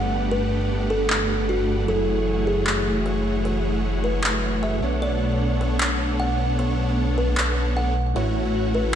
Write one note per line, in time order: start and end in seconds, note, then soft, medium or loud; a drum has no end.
0.00 1.87 G1 medium
0.00 1.85 G3 medium
0.00 1.86 A3 medium
0.00 8.12 A3 medium
0.00 1.85 B3 medium
0.00 1.86 D4 medium
0.00 1.86 G4 medium
0.00 1.87 A4 medium
0.00 1.86 B4 medium
0.00 1.87 B4 medium
0.00 0.21 F#5 medium
0.00 1.86 F#5 medium
0.31 0.60 B4 medium
0.90 1.05 A4 medium
1.10 clap medium
1.49 1.78 F#4 medium
1.86 4.81 F#1 medium
1.86 4.80 E3 medium
1.86 4.79 F#3 medium
1.86 4.80 A3 medium
1.86 4.81 A3 medium
1.86 4.80 E4 medium
1.86 4.80 F#4 medium
1.86 4.80 G#4 medium
1.86 4.81 G#4 medium
1.86 2.17 A4 medium
1.86 4.80 C#5 medium
1.86 4.80 F#5 medium
2.47 2.62 G#4 medium
2.67 clap medium
3.06 3.35 C#5 medium
3.45 3.74 C#5 medium
4.04 4.19 B4 medium
4.24 clap medium
4.63 4.92 E5 medium
4.80 8.14 B1 medium
4.80 7.93 B2 medium
4.80 7.94 A3 medium
4.80 7.94 B3 medium
4.80 8.13 B3 medium
4.80 7.94 D4 medium
4.80 8.13 D4 medium
4.80 7.94 D4 medium
4.80 7.94 A4 medium
4.80 7.94 C#5 medium
4.80 7.94 F#5 medium
4.84 7.95 C#5 medium
5.02 5.31 D5 medium
5.61 5.75 C#5 medium
5.81 clap medium
6.20 6.48 F#5 medium
6.59 6.88 C#5 medium
7.18 7.32 B4 medium
7.37 clap medium
7.77 8.05 F#5 medium
8.14 8.95 A1 medium
8.14 8.95 E3 medium
8.14 8.95 A3 medium
8.14 8.95 C#4 medium
8.14 8.95 E4 medium
8.14 8.95 F#4 medium
8.14 8.95 C#5 medium
8.14 8.45 C#5 medium
8.14 8.95 C#5 medium
8.14 8.95 F#5 medium
8.75 8.89 B4 medium